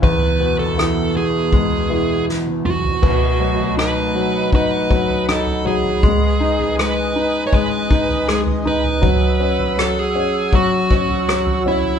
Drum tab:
CC |----------------|x---------------|----------------|----------------|
SD |----r-------o---|----r-------r---|----r-------r---|----r-------r---|
T1 |-------------o--|----------------|----------------|----------------|
T2 |--------------o-|----------------|----------------|----------------|
FT |o--o----o------o|o--o-------o-ooo|o--o-------o-ooo|o--o-------o-ooo|
BD |o-------o-------|o-------o-o-----|o-------o-o-----|o-------o-o-----|